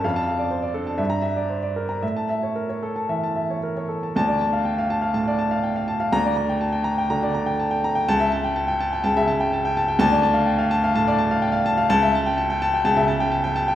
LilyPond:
<<
  \new Staff \with { instrumentName = "Grand piano" } { \time 4/4 \key d \minor \tempo 4 = 124 << { r16 a''8 r4. bes''8 r4 r16 | r16 a''8 r2. r16 | a''8 r2. r8 | bes''8 r2. r8 |
a''8 r2. r8 | a''8 r2. r8 | a''8 r2. r8 | } \\ { f''8 f''16 d''16 c''16 d''16 a'16 a''16 e''8 e''16 d''16 c''16 d''16 bes'16 bes''16 | e''8 e''16 cis''16 bes'16 cis''16 a'16 a''16 e''16 a''16 e''16 cis''16 bes'16 cis''16 a'16 a''16 | r16 d''16 a''16 f''16 g''16 f''16 a''16 f''16 a''16 d''16 a''16 f''16 g''16 f''16 a''16 f''16 | r16 d''16 bes''16 g''16 a''16 g''16 bes''16 g''16 bes''16 d''16 bes''16 g''16 a''16 g''16 bes''16 g''16 |
r16 e''16 a''16 g''16 a''16 g''16 a''16 g''16 a''16 e''16 a''16 g''16 a''16 g''16 a''16 g''16 | r16 d''16 a''16 f''16 g''16 f''16 a''16 f''16 a''16 d''16 a''16 f''16 g''16 f''16 a''16 f''16 | r16 e''16 a''16 g''16 a''16 g''16 a''16 g''16 a''16 e''16 a''16 g''16 a''16 g''16 a''16 g''16 | } >> }
  \new Staff \with { instrumentName = "Grand piano" } { \clef bass \time 4/4 \key d \minor f,4. d'8 g,2 | a,2 e8. r4 r16 | d,2 a,8 r4. | d,2 d8 r4. |
cis,2 cis,16 cis8 r4 r16 | d,2 a,8 r4. | cis,2 cis,16 cis8 r4 r16 | }
>>